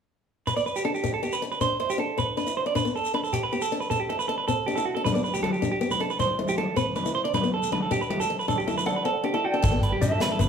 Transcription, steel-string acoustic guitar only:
0.47 D4
0.57 B3
0.85 D4
1.04 D4
1.23 B3
1.42 D4
1.61 D4
1.80 E4
1.98 D4
2.18 C4
2.37 D4
2.47 E4
2.66 D4
2.75 D4
2.85 B3
3.14 D4
3.34 muted steel-string acoustic guitar stroke
3.53 B3
3.72 D4
3.91 D4
4.10 E4
4.29 D4
4.48 C4
4.68 D4
4.77 E4
4.96 D4
5.06 D4
5.15 B3
5.44 D4
5.62 D4
5.81 B3
6.00 D4
6.19 D4
6.39 E4
6.58 D4
6.76 C4
6.96 D4
7.06 E4
7.25 D4
7.34 D4
7.44 B3
7.72 D4
7.91 D4
8.10 A3
8.30 D4
8.48 D4
8.68 E4
8.86 D4
9.05 C4
9.24 D4
9.34 E4
9.54 D4
9.62 D4
9.72 B3
10.02 D4
10.20 D4
10.39 B3

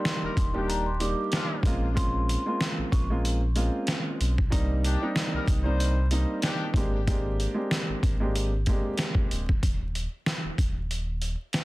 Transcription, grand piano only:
Already playing: G3 A#3 D4 D#4 G4
0.53 G3 A#3 D4 D#4 G4
0.99 G3 A#3 D4 D#4 G4
1.65 G#3 A#3 C4 C#4 F4
1.94 G#3 A#3 C4 C#4 F4
2.46 G#3 A#3 C4 C#4 F4
3.10 G#3 A#3 C4 C#4 F4
3.56 G#3 A#3 C4 C#4 F4
4.50 G3 A#3 C4 D4 D#4
5.01 G3 A#3 C4 D4 D#4
5.64 G3 A#3 C4 D4 D#4
6.11 G3 A#3 C4 D4 D#4
6.76 G#3 A#3 C4 D4 G4
7.07 G#3 A#3 C4 D4 G4
7.54 G#3 A#3 C4 D4 G4
8.20 G#3 A#3 C4 D4 G4
8.68 G#3 A#3 C4 D4 G4

